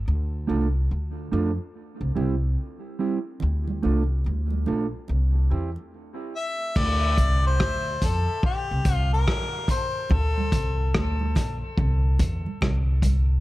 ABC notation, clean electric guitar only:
X:1
M:4/4
L:1/8
Q:"Swing 16ths" 1/4=72
K:Dm
V:1 name="Clean electric guitar"
z [A,DFA] z [A,DFA] z [G,CEG] z [G,CEG] | z [A,DFA] z [A,DFA] z [G,CEG] z2 | z [DFA] z6 | z8 |]